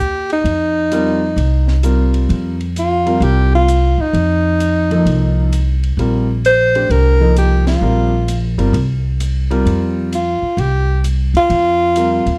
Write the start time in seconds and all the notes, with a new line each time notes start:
Already playing: D#2 G4
0.30 D#4, ride
0.44 F2, ride
0.92 G3 C4 F4 A#4, hi-hat pedal, ride
1.36 C2, ride
1.68 snare
1.83 G3 C4 F4 A#4, hi-hat pedal, ride
2.14 ride
2.29 F2, ride
2.61 ride
2.76 F4, hi-hat pedal, ride
3.06 G3 C4 F4 A#4, ride
3.20 C2 G4, ride
3.55 F4
3.68 hi-hat pedal, ride
3.98 F#2 D#4
4.13 F2, ride
4.60 hi-hat pedal, ride
4.91 F3 A#3 D#4 A4, ride
5.05 C2, ride
5.53 hi-hat pedal, ride
5.83 ride
5.97 A#1 G3 C4 F4 A#4, ride
6.45 C5, hi-hat pedal, ride
6.75 A3 D4 G4 C5, ride
6.89 C2 A#4, ride
7.21 F3 A#3 D#4 A4
7.36 G4, hi-hat pedal, ride
7.67 F4, snare, ride
7.81 A#1 G3 C4 F4 A#4
8.28 hi-hat pedal, ride
8.58 G1 G3 C4 F4 A#4, ride
8.73 C2, ride
9.20 hi-hat pedal, ride
9.51 G3 C4 F4 A#4, ride
9.65 F2, ride
10.13 F4, hi-hat pedal, ride
10.42 muted upright bass stroke
10.57 C2 G4, ride
11.04 hi-hat pedal, ride
11.34 E2 F4, ride
11.50 F2, ride
11.96 G3 C4 F4 A#4, hi-hat pedal, ride
12.26 D#2, ride